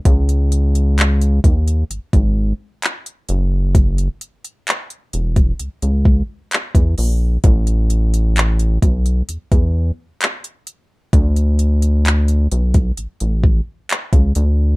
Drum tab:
HH |xxxxxxxxxx--xxx-|xxxxxxxxxx--xxo-|xxxxxxxxxx--xxx-|xxxxxxxxxx--xxx-|
CP |----x-------x---|----x-------x---|----x-------x---|----x-------x---|
BD |o-----o--o------|o------o--o--o--|o-----o--o------|o------o--o--o--|